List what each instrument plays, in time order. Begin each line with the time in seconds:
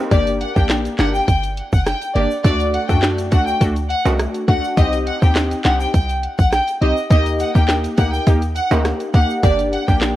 Already playing: swell
0.11 808-style bass G1, synth stab A#3 D4 G4, violin section D5, kick, closed hi-hat, shaker
0.27 closed hi-hat, shaker
0.41 violin section F#5, closed hi-hat
0.56 808-style bass A#1, synth stab A#3 D4 G4, violin section G5, kick, shaker
0.69 snare, clap, closed hi-hat, shaker
0.85 closed hi-hat, shaker
0.98 808-style bass G1, synth stab A#3 D4 G4, violin section F#5, snare, clap, closed hi-hat, shaker
1.14 violin section G5, shaker
1.28 808-style bass G1, violin section G5, kick, closed hi-hat, shaker
1.43 closed hi-hat, shaker
1.57 closed hi-hat
1.72 808-style bass F#1, violin section F#5, kick, shaker
1.86 violin section G5, cross-stick, snare, closed hi-hat, shaker
2.02 closed hi-hat, shaker
2.15 808-style bass G1, synth stab A#3 D4 G4, violin section D5, closed hi-hat
2.31 shaker
2.44 808-style bass D2, synth stab A3 D4 F#4, violin section D5, kick, closed hi-hat, shaker
2.60 closed hi-hat, shaker
2.74 violin section F#5, closed hi-hat
2.89 808-style bass F#2, synth stab A3 D4 F#4, violin section G5, kick, shaker
3.02 snare, clap, closed hi-hat, shaker
3.18 closed hi-hat, shaker
3.31 808-style bass D2, synth stab A3 D4 F#4, violin section F#5, kick, closed hi-hat, shaker
3.47 violin section G5, shaker
3.61 808-style bass D2, synth stab A3 D4 F#4, kick, closed hi-hat, shaker
3.76 closed hi-hat, shaker
3.90 violin section F#5, closed hi-hat
4.05 808-style bass C2, synth stab A3 D4 F#4, high timbale, shaker
4.19 cross-stick, closed hi-hat, shaker
4.34 closed hi-hat, shaker
4.48 808-style bass D2, synth stab A3 D4 F#4, violin section F#5, kick, closed hi-hat
4.64 shaker
4.77 808-style bass C2, synth stab C4 D#4 G4, violin section D#5, kick, closed hi-hat, shaker
4.93 closed hi-hat, shaker
5.07 violin section F#5, closed hi-hat
5.22 808-style bass D#2, synth stab C4 D#4 G4, violin section G5, kick, shaker
5.35 snare, clap, closed hi-hat, shaker
5.51 closed hi-hat, shaker
5.64 808-style bass C2, synth stab C4 D#4 G4, violin section F#5, snare, clap, closed hi-hat, shaker
5.80 violin section G5, shaker
5.94 808-style bass C2, violin section G5, kick, closed hi-hat, shaker
6.09 closed hi-hat, shaker
6.23 closed hi-hat
6.39 808-style bass A#1, violin section F#5, kick, shaker
6.52 violin section G5, cross-stick, snare, closed hi-hat, shaker
6.67 closed hi-hat, shaker
6.81 808-style bass C2, synth stab C4 D#4 G4, violin section D#5, closed hi-hat
6.97 shaker
7.10 808-style bass D#2, synth stab A#3 D#4 G4, violin section D#5, kick, closed hi-hat, shaker
7.26 closed hi-hat, shaker
7.39 violin section F#5, closed hi-hat, shaker
7.55 808-style bass D#2, synth stab A#3 D#4 G4, violin section G5, kick, shaker
7.68 snare, clap, closed hi-hat, shaker
7.84 closed hi-hat, shaker
7.98 808-style bass D2, synth stab A#3 D#4 G4, violin section F#5, kick, closed hi-hat, shaker
8.13 violin section G5, shaker
8.26 808-style bass D#2, synth stab A#3 D#4 G4, kick, closed hi-hat, shaker
8.42 closed hi-hat, shaker
8.56 violin section F#5, closed hi-hat, shaker
8.71 808-style bass D2, synth stab A#3 D#4 G4, high timbale, shaker
8.85 cross-stick, snare, closed hi-hat, shaker
9.00 closed hi-hat, shaker
9.14 808-style bass D#2, synth stab A#3 D#4 G4, violin section F#5, kick, closed hi-hat, shaker
9.30 shaker
9.43 808-style bass G1, synth stab A#3 D4 G4, violin section D5, kick, closed hi-hat, shaker
9.59 closed hi-hat, shaker
9.72 violin section F#5, closed hi-hat
9.88 808-style bass A#1, synth stab A#3 D4 G4, violin section G5, kick, shaker
10.01 snare, clap, closed hi-hat, shaker